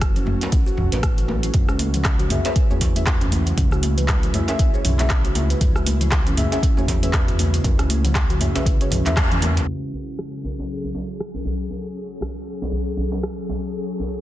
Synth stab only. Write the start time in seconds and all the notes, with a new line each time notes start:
2.30 C#4 G#4 E5
2.45 C#4 G#4 E5
2.71 C#4 G#4 C#5
2.96 C#4 G#4 E5
4.34 C#4 G#4 E5
4.49 C#4 G#4 E5
4.74 C#4 G#4 C#5
5.00 C#4 G#4 E5
6.37 C#4 G#4 E5
6.52 C#4 G#4 E5
6.77 C#4 G#4 C#5
7.03 C#4 G#4 E5
8.41 C#4 G#4 E5
8.55 C#4 G#4 E5
8.81 C#4 G#4 C#5
9.06 C#4 G#4 E5